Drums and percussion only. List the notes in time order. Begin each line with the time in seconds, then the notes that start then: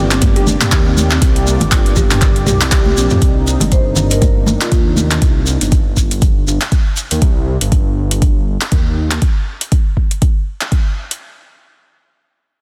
0.11 clap, closed hi-hat, shekere
0.22 kick, closed hi-hat, mid tom, high conga, shekere
0.36 closed hi-hat
0.47 high conga, low conga, shekere
0.61 clap, closed hi-hat, mid tom, shekere
0.71 kick, clap, closed hi-hat, shekere
0.97 high conga, shekere
1.10 clap, shekere
1.22 kick, closed hi-hat, shekere
1.36 closed hi-hat
1.47 shekere
1.60 closed hi-hat, high conga, low conga, shekere
1.72 kick, clap, closed hi-hat, shekere
1.86 closed hi-hat
1.96 kick, low conga, shekere
2.11 clap, closed hi-hat, mid tom, shekere
2.22 kick, clap, closed hi-hat, shekere
2.36 closed hi-hat
2.46 mid tom, high conga, shekere
2.61 clap, closed hi-hat, shekere
2.71 kick, clap, closed hi-hat, shekere
2.86 high conga
2.97 shekere
3.10 mid tom, high conga, shekere
3.22 kick, closed hi-hat, shekere
3.47 shekere
3.60 closed hi-hat, high conga, low conga, shekere
3.72 kick, closed hi-hat, shekere
3.96 low conga, shekere
4.11 closed hi-hat, shekere
4.21 kick, closed hi-hat, high conga, shekere
4.46 high conga, low conga, shekere
4.61 clap, closed hi-hat, shekere
4.72 kick, closed hi-hat, shekere
4.96 high conga, shekere
5.11 clap, closed hi-hat, shekere
5.22 kick, closed hi-hat, shekere
5.46 shekere
5.61 closed hi-hat, shekere
5.72 kick, closed hi-hat, shekere
5.97 kick, shekere
6.11 closed hi-hat, shekere
6.22 kick, closed hi-hat, shekere
6.48 shekere
6.61 clap, closed hi-hat, shekere
6.72 kick, closed hi-hat, shekere
6.97 shekere
7.11 closed hi-hat, shekere
7.22 kick, closed hi-hat
7.61 closed hi-hat
7.72 kick, closed hi-hat
8.11 closed hi-hat
8.22 kick, closed hi-hat
8.61 clap, closed hi-hat
8.72 kick, closed hi-hat
9.11 clap, closed hi-hat
9.22 kick, closed hi-hat
9.61 closed hi-hat
9.72 kick, closed hi-hat
9.97 kick
10.11 closed hi-hat
10.22 kick, closed hi-hat
10.61 clap, closed hi-hat
10.72 kick, closed hi-hat
11.11 closed hi-hat